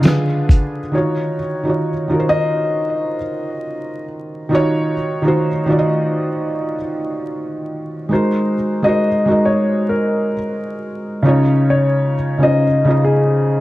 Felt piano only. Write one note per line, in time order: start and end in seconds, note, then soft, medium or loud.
0.01 0.78 D3 medium
0.01 0.79 D4 medium
0.01 0.80 F4 medium
0.06 0.81 G#4 medium
0.06 0.81 B4 medium
0.91 1.35 D#3 medium
0.91 1.36 D#4 medium
0.91 1.37 F4 medium
0.96 1.38 F#4 medium
0.96 1.38 C#5 medium
1.64 1.89 D#3 medium
1.64 1.90 D#4 medium
1.64 1.90 F4 medium
1.68 1.91 F#4 medium
1.68 1.92 C#5 medium
2.08 3.16 D#3 medium
2.08 3.17 D#4 medium
2.08 3.17 F4 medium
2.12 3.18 F#4 medium
2.12 2.17 A#4 medium
2.20 3.22 C5 medium
4.49 4.93 D#3 medium
4.49 4.94 D#4 medium
4.49 4.95 F4 medium
4.53 4.95 F#4 medium
4.53 4.96 C#5 loud
5.22 5.47 D#3 medium
5.22 5.48 D#4 medium
5.22 5.49 F4 medium
5.26 5.49 F#4 medium
5.26 5.50 C5 medium
5.66 6.74 D#3 medium
5.66 6.75 D#4 medium
5.66 6.75 F4 medium
5.70 6.76 F#4 medium
5.70 5.76 D5 medium
5.79 6.80 D#5 medium
8.09 8.52 G#3 medium
8.09 8.53 D#4 medium
8.09 8.54 F#4 medium
8.13 8.54 A#4 medium
8.13 8.55 C5 medium
8.82 9.07 G#3 medium
8.82 9.07 D#4 medium
8.82 9.08 F#4 medium
8.87 9.09 A#4 medium
8.87 9.09 C5 medium
9.26 10.33 G#3 medium
9.26 10.34 D#4 medium
9.26 10.34 F#4 medium
9.30 10.35 A#4 medium
9.30 10.36 D#5 medium
11.23 12.13 C#3 medium
11.23 12.14 C#4 medium
11.23 12.14 D#4 medium
11.27 12.15 F4 medium
11.27 12.16 C#5 medium
12.38 12.64 C#3 medium
12.38 12.64 C#4 medium
12.38 12.65 D#4 medium
12.43 12.66 F4 medium
12.43 12.67 C5 medium
12.85 13.61 C#3 medium
12.85 13.61 C#4 medium
12.85 13.61 D#4 medium
12.85 13.61 F4 medium
12.91 13.61 D#5 medium